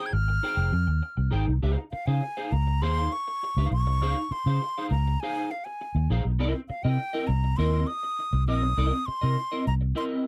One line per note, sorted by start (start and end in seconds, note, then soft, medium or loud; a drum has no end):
0.00 0.11 D#4 medium
0.00 0.12 G#4 medium
0.00 0.12 C5 medium
0.00 0.13 G5 medium
0.06 0.15 G#6 medium
0.13 0.38 G#1 medium
0.13 1.33 F6 loud
0.13 muted clean electric guitar stroke medium
0.28 muted clean electric guitar stroke medium
0.43 0.71 D#4 medium
0.43 0.71 G#4 medium
0.43 0.71 C5 medium
0.43 0.71 G5 medium
0.57 0.70 F1 medium
0.72 0.85 F2 medium
0.72 muted clean electric guitar stroke soft
0.87 1.00 D#2 medium
0.87 muted clean electric guitar stroke soft
1.02 muted clean electric guitar stroke soft
1.17 1.30 C2 medium
1.17 muted clean electric guitar stroke soft
1.31 1.45 G#1 medium
1.31 1.52 D#4 medium
1.31 1.46 G#4 loud
1.31 1.46 C5 medium
1.31 1.45 G5 loud
1.47 1.60 C2 medium
1.47 muted clean electric guitar stroke soft
1.62 1.75 C#2 loud
1.62 1.83 D#4 medium
1.62 1.77 G#4 loud
1.62 1.77 C5 loud
1.62 1.77 F5 loud
1.78 muted clean electric guitar stroke soft
1.92 2.08 F5 medium
1.92 muted clean electric guitar stroke soft
1.92 muted fingered electric bass stroke soft
2.06 2.20 C#3 medium
2.06 2.21 D#4 medium
2.06 2.22 G#4 medium
2.06 2.22 C5 medium
2.06 2.22 F5 medium
2.06 2.54 G#5 loud
2.23 muted clean electric guitar stroke soft
2.37 2.51 D#4 medium
2.37 2.52 G#4 medium
2.37 2.52 C5 medium
2.37 2.52 F5 medium
2.52 2.83 C#2 medium
2.52 2.83 A#5 loud
2.52 muted clean electric guitar stroke soft
2.67 muted clean electric guitar stroke soft
2.82 3.07 D#2 loud
2.82 3.09 D#4 loud
2.82 3.10 G#4 loud
2.82 3.10 C5 loud
2.82 3.10 F5 loud
2.82 3.14 C6 loud
3.12 3.72 C#6 loud
3.12 muted clean electric guitar stroke soft
3.27 muted clean electric guitar stroke soft
3.43 muted clean electric guitar stroke soft
3.57 3.69 C#2 medium
3.57 3.71 D#4 medium
3.57 3.71 G#4 medium
3.57 3.71 C5 medium
3.57 3.72 F5 medium
3.71 3.87 B1 medium
3.71 4.34 C#6 loud
3.71 muted clean electric guitar stroke soft
3.87 4.01 C2 medium
3.87 muted clean electric guitar stroke medium
4.01 4.13 C#2 loud
4.01 4.22 D#4 medium
4.01 4.17 G#4 loud
4.01 4.17 C5 loud
4.01 4.16 F5 loud
4.17 muted clean electric guitar stroke medium
4.31 4.90 C6 loud
4.31 muted fingered electric bass stroke soft
4.31 muted clean electric guitar stroke soft
4.46 4.58 C#3 medium
4.46 4.61 D#4 medium
4.46 4.62 G#4 soft
4.46 4.62 C5 medium
4.46 4.62 F5 medium
4.62 muted clean electric guitar stroke soft
4.78 4.92 D#4 medium
4.78 4.92 G#4 medium
4.78 4.92 C5 medium
4.78 4.93 F5 medium
4.91 5.15 C#2 medium
4.91 5.22 A#5 medium
4.91 muted clean electric guitar stroke soft
5.07 muted clean electric guitar stroke soft
5.20 5.49 D#4 medium
5.20 5.49 G#4 medium
5.20 5.49 C5 medium
5.20 5.49 F5 medium
5.20 5.52 G#5 loud
5.51 5.66 F5 medium
5.51 muted clean electric guitar stroke soft
5.65 6.10 G#5 medium
5.65 muted clean electric guitar stroke soft
5.81 muted clean electric guitar stroke soft
5.95 6.07 D#2 medium
5.95 muted clean electric guitar stroke soft
6.10 6.22 A#1 loud
6.10 6.30 D#4 medium
6.10 6.24 G#4 medium
6.10 6.23 C5 medium
6.10 6.23 F5 medium
6.24 6.40 B1 medium
6.24 muted clean electric guitar stroke soft
6.39 6.52 C2 medium
6.39 6.59 C4 loud
6.39 6.53 E4 loud
6.39 6.53 A#4 loud
6.39 6.53 D#5 loud
6.54 muted clean electric guitar stroke soft
6.69 6.85 F5 medium
6.69 muted clean electric guitar stroke soft
6.69 muted fingered electric bass stroke soft
6.83 6.97 C3 medium
6.83 6.97 C4 soft
6.83 6.98 E4 medium
6.83 6.98 A#4 medium
6.83 6.98 D#5 medium
6.83 7.29 G5 loud
6.98 muted clean electric guitar stroke soft
7.13 7.28 C4 medium
7.13 7.28 E4 medium
7.13 7.29 A#4 medium
7.13 7.29 D#5 medium
7.27 7.53 C2 medium
7.27 7.58 A#5 medium
7.27 muted clean electric guitar stroke medium
7.44 muted clean electric guitar stroke medium
7.57 7.83 D#2 medium
7.57 7.86 C4 medium
7.57 7.86 E4 medium
7.57 7.86 A#4 loud
7.57 7.87 D#5 medium
7.57 7.88 C6 loud
7.87 8.47 D#6 loud
7.87 muted clean electric guitar stroke soft
8.03 muted clean electric guitar stroke medium
8.19 muted clean electric guitar stroke soft
8.33 8.48 C2 medium
8.33 muted clean electric guitar stroke soft
8.48 8.63 A#1 medium
8.48 8.68 C4 medium
8.48 8.63 E4 loud
8.48 8.62 A#4 medium
8.48 8.62 D#5 medium
8.48 9.08 D#6 loud
8.63 8.75 B1 medium
8.63 muted clean electric guitar stroke medium
8.77 8.90 C2 medium
8.77 8.98 C4 medium
8.77 8.92 E4 medium
8.77 8.92 A#4 loud
8.77 8.92 D#5 loud
8.93 muted clean electric guitar stroke medium
9.06 9.67 C6 loud
9.06 muted clean electric guitar stroke soft
9.06 muted fingered electric bass stroke soft
9.21 9.35 C3 medium
9.21 9.36 C4 medium
9.21 9.36 E4 medium
9.21 9.36 A#4 medium
9.21 9.37 D#5 medium
9.37 muted clean electric guitar stroke soft
9.52 9.65 C4 medium
9.52 9.65 E4 medium
9.52 9.66 A#4 medium
9.52 9.66 D#5 medium
9.66 9.92 C2 medium
9.66 9.74 A#5 loud
9.66 muted clean electric guitar stroke soft
9.81 muted clean electric guitar stroke soft
9.95 10.24 C4 medium
9.95 10.24 E4 loud
9.95 10.24 A#4 medium
9.95 10.24 D#5 medium
9.95 10.04 C6 loud